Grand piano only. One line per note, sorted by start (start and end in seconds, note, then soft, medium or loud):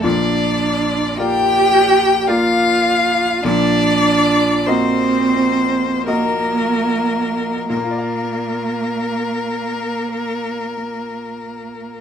0.04 3.39 A#1 medium
0.04 3.39 A#2 medium
1.19 2.24 A#3 medium
1.19 2.25 F4 medium
1.19 2.25 D5 medium
2.28 3.39 A#3 medium
2.28 3.40 F4 medium
2.28 3.39 D5 medium
3.44 7.66 A#1 medium
3.44 7.66 A#2 loud
4.67 6.03 A#3 medium
4.67 6.03 F#4 medium
4.67 6.03 D#5 medium
6.07 7.66 A#3 medium
6.07 7.66 F#4 medium
6.07 7.66 D#5 medium
7.70 12.01 A#2 medium
7.77 12.01 A#3 medium
7.84 12.01 F4 medium
7.91 12.01 D5 medium
7.98 12.01 F5 medium